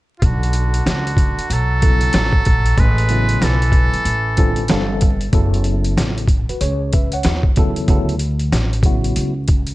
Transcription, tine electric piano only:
1.82 2.30 C#3 medium
1.82 2.30 F#3 medium
1.82 2.30 B3 medium
1.82 2.30 E4 medium
1.82 2.31 A4 medium
3.09 4.01 C#3 medium
3.09 4.01 F#3 medium
3.09 4.01 B3 medium
3.09 4.01 E4 medium
3.09 4.01 B4 medium
4.37 4.62 D3 medium
4.37 4.62 G3 medium
4.37 4.62 C4 medium
4.37 4.63 F4 medium
4.37 4.63 A4 medium
4.69 5.09 D3 medium
4.69 5.09 G3 medium
4.69 5.09 C4 medium
4.69 5.10 A4 medium
4.69 5.10 F5 medium
5.33 6.24 C#3 medium
5.33 6.24 F#3 medium
5.33 6.24 B3 medium
5.33 6.25 E4 medium
5.33 6.25 A4 medium
6.49 6.61 F#4 soft
6.49 6.60 B4 medium
6.61 6.92 G#4 medium
6.61 6.91 C#5 medium
6.94 7.12 B4 medium
6.94 7.12 E5 medium
7.13 7.44 C#5 medium
7.13 7.43 F#5 medium
7.56 7.87 C#3 medium
7.56 7.88 F#3 medium
7.56 7.88 B3 medium
7.56 7.89 E4 medium
7.56 7.89 A4 medium
7.89 8.13 C#3 medium
7.89 8.13 F#3 medium
7.89 8.14 B3 medium
7.89 8.14 E4 medium
7.89 8.14 A4 medium
8.85 9.32 C#3 medium
8.85 9.32 F#3 medium
8.85 9.33 B3 medium
8.85 9.33 E4 medium
8.85 9.33 F#4 medium

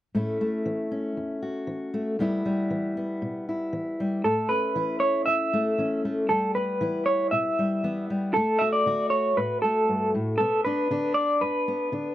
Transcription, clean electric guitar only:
4.24 4.48 A4 medium
4.49 5.00 B4 medium
5.00 5.24 C#5 medium
5.26 5.99 E5 medium
6.29 6.55 A4 medium
6.55 7.03 B4 medium
7.06 7.30 C#5 medium
7.31 8.04 E5 medium
8.34 8.60 A4 medium
8.59 8.71 E5 medium
8.73 9.10 D5 medium
9.10 9.37 C#5 medium
9.37 9.62 B4 medium
9.62 10.10 A4 soft
10.38 10.64 A4 medium
10.65 11.12 B4 medium
11.14 11.41 D5 medium
11.41 12.14 B4 medium

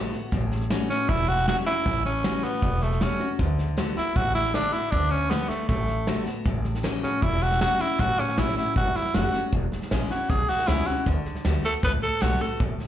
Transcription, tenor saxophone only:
0.90 1.10 C#4 medium
1.09 1.30 E4 loud
1.28 1.47 F#4 loud
1.48 1.56 F#4 loud
1.66 2.02 E4 loud
2.05 2.45 C#4 loud
2.44 2.84 B3 medium
2.82 3.04 A3 medium
3.03 3.30 C#4 medium
3.97 4.18 E4 loud
4.16 4.34 F#4 loud
4.35 4.56 E4 loud
4.54 4.74 D4 loud
4.72 4.92 E4 medium
4.91 5.12 D4 loud
5.10 5.31 C#4 medium
5.30 5.50 B3 medium
5.48 5.67 A3 medium
5.68 6.22 A3 medium
7.03 7.24 C#4 medium
7.22 7.44 E4 loud
7.42 7.61 F#4 loud
7.61 7.82 F#4 loud
7.81 8.02 E4 loud
8.00 8.21 F#4 loud
8.19 8.40 C#4 loud
8.39 8.57 E4 loud
8.58 8.75 E4 medium
8.77 8.97 F#4 loud
8.96 9.16 E4 loud
9.15 9.43 F#4 medium
10.11 10.31 F#4 medium
10.30 10.50 G#4 loud
10.49 10.69 F#4 loud
10.67 10.88 E4 loud
10.86 11.06 F#4 medium
11.65 11.73 A4 medium
11.84 11.93 B4 loud
12.03 12.23 A4 loud
12.22 12.42 F#4 loud
12.41 12.60 A4 medium

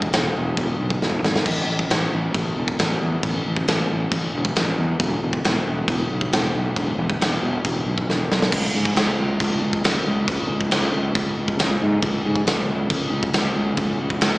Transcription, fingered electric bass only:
0.14 0.28 E1 medium
0.36 0.50 E1 medium
0.58 0.72 E1 loud
0.80 0.94 B1 medium
1.01 1.16 E1 medium
1.23 1.38 G#1 loud
1.45 1.60 A1 medium
1.67 1.82 A1 medium
1.90 2.04 A1 medium
2.13 2.27 A1 medium
2.35 2.49 A1 loud
2.58 2.72 E1 medium
2.80 2.94 A1 loud
3.02 3.16 E2 medium
3.23 3.38 A1 medium
3.46 3.60 A1 medium
3.68 3.82 A1 medium
3.90 4.04 A1 medium
4.12 4.26 A1 medium
4.34 4.49 E1 medium
4.56 4.71 A1 medium
4.78 4.93 E2 loud
5.00 5.15 E1 medium
5.22 5.37 E1 medium
5.44 5.59 E1 medium
5.67 5.81 E1 medium
5.88 6.03 E1 loud
6.10 6.25 B1 medium
6.33 6.47 E1 medium
6.55 6.69 B1 medium
6.76 6.91 E1 medium
6.98 7.13 E1 loud
7.20 7.35 E1 medium
7.42 7.57 E1 medium
7.65 7.79 E1 loud
7.86 8.01 B1 medium
8.09 8.23 E1 medium
8.31 8.46 B1 loud
8.52 8.68 C#2 loud
8.74 8.90 G#2 loud
8.96 9.11 C#2 medium
9.19 9.34 C#2 medium
9.40 9.56 C#2 loud
9.62 9.77 C#2 medium
9.85 10.00 C#2 loud
10.07 10.22 C#2 loud
10.28 10.43 C#2 loud
10.50 10.65 C#2 medium
10.72 10.87 C#2 medium
10.95 11.10 C#2 medium
11.15 11.30 C#2 medium
11.39 11.53 C#2 loud
11.60 11.75 C#2 medium
11.82 11.97 G#2 loud
12.03 12.18 C#2 loud
12.26 12.40 G#2 loud
12.47 12.62 C#2 loud
12.69 12.84 C#2 medium
12.90 13.05 C#2 loud
13.12 13.27 C#2 medium
13.34 13.49 C#2 medium
13.55 13.70 C#2 loud
13.77 13.92 C#2 loud
14.00 14.15 C#2 loud
14.22 14.37 C#2 medium

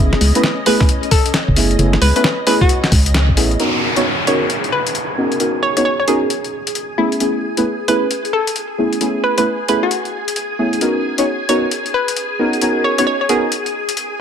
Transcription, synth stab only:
0.00 0.32 A3 medium
0.00 0.32 B3 medium
0.00 0.32 C#4 medium
0.00 0.32 E4 medium
0.00 0.32 G#4 medium
0.35 0.42 A3 loud
0.35 0.42 B3 medium
0.35 0.42 C#4 medium
0.35 0.42 E4 medium
0.35 0.42 B4 loud
0.66 0.83 A3 loud
0.66 0.83 B3 medium
0.66 0.83 C#4 medium
0.66 0.83 E4 medium
0.66 0.83 G#4 loud
1.56 1.77 A3 medium
1.56 1.77 B3 medium
1.56 1.77 C#4 medium
1.56 1.77 E4 medium
1.56 1.77 G#4 medium
1.79 2.12 A3 medium
1.79 2.12 B3 medium
1.79 2.12 C#4 medium
1.79 2.12 E4 medium
1.79 2.12 G#4 medium
2.16 2.22 A3 medium
2.16 2.22 B3 medium
2.16 2.22 C#4 medium
2.16 2.22 E4 medium
2.16 2.22 B4 loud
2.47 2.63 A3 medium
2.47 2.63 B3 medium
2.47 2.63 C#4 medium
2.47 2.63 E4 medium
2.47 2.63 G#4 loud
3.37 3.58 A3 medium
3.37 3.58 B3 medium
3.37 3.58 C#4 medium
3.37 3.58 E4 medium
3.37 3.58 G#4 medium
3.60 3.93 B3 medium
3.60 3.93 C#4 medium
3.60 3.93 D#4 medium
3.60 3.93 F#4 medium
3.60 3.93 A#4 medium
3.96 4.03 B3 medium
3.96 4.03 C#4 medium
3.96 4.03 D#4 medium
3.96 4.03 F#4 medium
3.96 4.03 C#5 loud
4.27 4.44 B3 medium
4.27 4.44 C#4 medium
4.27 4.44 D#4 medium
4.27 4.44 F#4 medium
4.27 4.44 A#4 loud
5.18 5.38 B3 medium
5.18 5.38 C#4 medium
5.18 5.38 D#4 medium
5.18 5.38 F#4 medium
5.18 5.38 A#4 medium
5.40 5.74 B3 medium
5.40 5.74 C#4 medium
5.40 5.73 D#4 medium
5.40 5.73 F#4 medium
5.40 5.73 A#4 medium
5.77 5.83 B3 medium
5.77 5.83 C#4 medium
5.77 5.83 D#4 medium
5.77 5.83 F#4 medium
5.77 5.83 C#5 loud
6.08 6.24 B3 medium
6.08 6.24 C#4 medium
6.08 6.24 D#4 medium
6.08 6.24 F#4 medium
6.08 6.24 A#4 loud
6.98 7.18 A3 medium
6.98 7.18 B3 medium
6.98 7.18 C#4 medium
6.98 7.18 E4 medium
6.98 7.18 G#4 medium
7.21 7.54 A3 medium
7.21 7.54 B3 medium
7.21 7.54 C#4 medium
7.21 7.54 E4 medium
7.21 7.54 G#4 medium
7.57 7.64 A3 medium
7.57 7.64 B3 medium
7.57 7.64 C#4 medium
7.57 7.64 E4 medium
7.57 7.64 B4 loud
7.88 8.05 A3 medium
7.88 8.05 B3 medium
7.88 8.05 C#4 medium
7.88 8.05 E4 medium
7.88 8.05 G#4 loud
8.78 8.99 A3 medium
8.78 8.99 B3 medium
8.78 8.99 C#4 medium
8.78 8.99 E4 medium
8.78 8.99 G#4 medium
9.01 9.34 A3 medium
9.01 9.34 B3 medium
9.01 9.34 C#4 medium
9.01 9.34 E4 medium
9.01 9.34 G#4 medium
9.38 9.44 A3 medium
9.38 9.44 B3 medium
9.38 9.44 C#4 medium
9.38 9.44 E4 medium
9.38 9.44 B4 loud
9.69 9.85 A3 medium
9.69 9.85 B3 medium
9.69 9.85 C#4 medium
9.69 9.85 E4 medium
9.69 9.85 G#4 loud
10.59 10.79 A3 medium
10.59 10.79 B3 medium
10.59 10.79 C#4 medium
10.59 10.79 E4 medium
10.59 10.79 G#4 medium
10.81 11.15 B3 medium
10.81 11.15 C#4 medium
10.81 11.15 D#4 medium
10.81 11.15 F#4 medium
10.81 11.15 A#4 medium
11.18 11.25 B3 medium
11.18 11.25 C#4 medium
11.18 11.25 D#4 medium
11.18 11.25 F#4 medium
11.18 11.25 C#5 loud
11.49 11.65 B3 medium
11.49 11.65 C#4 medium
11.49 11.65 D#4 medium
11.49 11.65 F#4 medium
11.49 11.65 A#4 loud
12.39 12.60 B3 medium
12.39 12.60 C#4 medium
12.39 12.60 D#4 medium
12.39 12.60 F#4 medium
12.39 12.60 A#4 medium
12.62 12.95 B3 medium
12.62 12.95 C#4 medium
12.62 12.95 D#4 medium
12.62 12.95 F#4 medium
12.62 12.95 A#4 medium
12.99 13.05 B3 loud
12.99 13.05 C#4 medium
12.99 13.05 D#4 medium
12.99 13.05 F#4 medium
12.99 13.05 C#5 loud
13.29 13.46 B3 loud
13.29 13.46 C#4 medium
13.29 13.46 D#4 medium
13.29 13.46 F#4 medium
13.29 13.46 A#4 loud

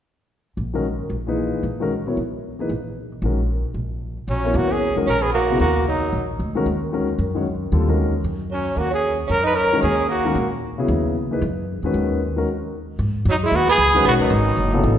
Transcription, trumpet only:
4.30 4.58 C#4 medium
4.57 4.73 F#4 medium
4.72 4.98 G#4 medium
5.09 5.23 A#4 medium
5.22 5.33 G#4 medium
5.33 5.58 F#4 medium
5.60 5.85 F#4 medium
5.88 6.27 D#4 medium
8.53 8.80 C#4 medium
8.79 8.93 F#4 medium
8.94 9.18 G#4 medium
9.31 9.45 A#4 medium
9.46 9.57 B4 medium
9.56 9.82 A#4 medium
9.83 10.08 G#4 medium
10.10 10.49 F#4 medium
13.31 13.37 D#4 medium
13.46 13.57 E4 medium
13.56 13.70 F#4 medium
13.71 14.04 G#4 loud
14.07 14.14 F#4 medium
14.21 14.96 D#4 medium

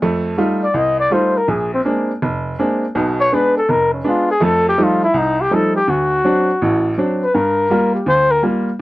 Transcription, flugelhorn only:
0.63 0.78 D5 medium
0.76 0.99 D#5 medium
1.00 1.14 D5 medium
1.13 1.38 C5 medium
1.37 1.51 A#4 medium
1.50 1.73 G#4 medium
1.74 1.81 C4 medium
3.20 3.36 C#5 medium
3.34 3.57 B4 medium
3.57 3.71 A4 medium
3.70 3.93 A#4 medium
3.94 4.10 C#4 soft
4.08 4.30 F4 medium
4.31 4.46 G#4 medium
4.45 4.67 A4 medium
4.69 4.85 G4 medium
4.83 5.03 F4 medium
5.04 5.19 E4 medium
5.18 5.43 D#4 medium
5.41 5.56 G4 medium
5.55 5.76 A4 medium
5.76 5.91 G4 medium
5.90 6.98 F#4 medium
7.22 7.36 B4 medium
7.35 7.94 A#4 medium
7.95 8.09 G4 medium
8.08 8.32 C5 medium
8.31 8.43 A#4 medium

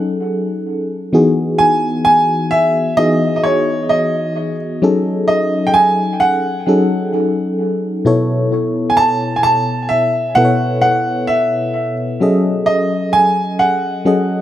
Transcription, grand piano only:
1.58 2.03 G#5 loud
2.05 2.48 G#5 loud
2.51 2.94 E5 medium
2.97 3.35 D#5 loud
3.36 3.44 D#5 medium
3.44 3.91 C#5 medium
3.89 4.55 D#5 medium
5.28 5.68 D#5 medium
5.67 5.74 G5 medium
5.74 6.22 G#5 loud
6.20 7.09 F#5 medium
8.90 8.97 G#5 medium
8.97 9.38 A5 loud
9.36 9.44 G#5 medium
9.43 9.87 A5 loud
9.89 10.37 E5 medium
10.35 10.80 F#5 medium
10.81 11.30 F#5 medium
11.27 11.93 E5 medium
12.66 13.14 D#5 medium
13.13 13.61 G#5 loud
13.59 14.41 F#5 medium

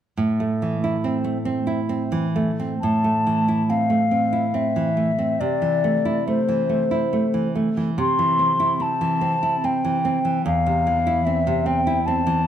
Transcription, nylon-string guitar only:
0.17 2.78 A2 soft
0.40 0.75 A3 soft
0.62 0.96 E3 soft
0.84 1.17 E4 soft
1.04 1.37 C4 soft
1.24 1.58 A3 soft
1.45 1.80 C4 soft
1.67 2.02 E4 soft
1.89 2.26 C4 soft
2.12 2.50 E3 soft
2.36 2.73 A3 soft
2.60 2.82 C4 soft
2.83 5.37 A2 soft
3.04 3.40 A3 soft
3.27 3.61 E3 soft
3.48 3.83 E4 soft
3.70 4.04 C4 soft
3.90 4.24 A3 soft
4.11 4.45 C4 soft
4.33 4.67 E4 soft
4.54 4.88 C4 soft
4.76 5.10 E3 soft
4.97 5.32 A3 soft
5.18 5.40 C4 soft
5.41 7.93 C3 soft
5.62 5.97 E3 soft
5.84 6.19 A3 soft
6.05 6.40 E4 soft
6.28 6.61 A3 soft
6.49 6.82 E3 soft
6.69 7.03 A3 soft
6.91 7.25 E4 soft
7.13 7.47 A3 soft
7.34 7.68 E3 soft
7.55 7.89 A3 soft
7.77 7.98 E3 soft
7.98 10.42 C3 soft
8.19 8.52 E3 soft
8.39 8.72 C4 soft
8.60 8.93 E4 soft
8.80 9.14 C4 soft
9.01 9.35 E3 soft
9.21 9.55 C4 soft
9.43 9.76 E4 soft
9.64 9.97 C4 soft
9.85 10.17 E3 soft
10.05 10.38 C4 soft
10.25 10.45 E3 soft
10.46 12.47 E2 soft
10.66 10.98 C3 soft
10.87 11.19 E3 soft
11.07 11.39 E4 soft
11.26 11.59 C4 soft
11.47 11.79 C3 soft
11.66 11.99 C4 soft
11.87 12.19 E4 soft
12.08 12.40 C4 soft
12.27 12.47 E3 soft

